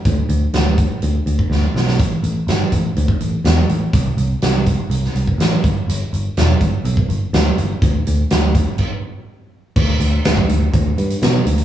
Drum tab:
CC |----------------|----------------|----------------|----------------|
HH |x-x-x-x-x-x-----|x-x-x-x-x-x-x-x-|x-x-x-x-x-x-x-x-|x-x-x-x-x-x-x-x-|
SD |----o-------o-oo|----o-------o---|----o----o--o---|----o-------o---|
BD |o-----o----o----|o-----o--o------|o-----o----o--o-|------o--o------|

CC |--------x-------|x---------------|
HH |x-x-x-x---------|--x-x-x-x-xxx-xx|
SD |----o-----------|----o-------o---|
BD |o-----o-o-------|o----o--o-------|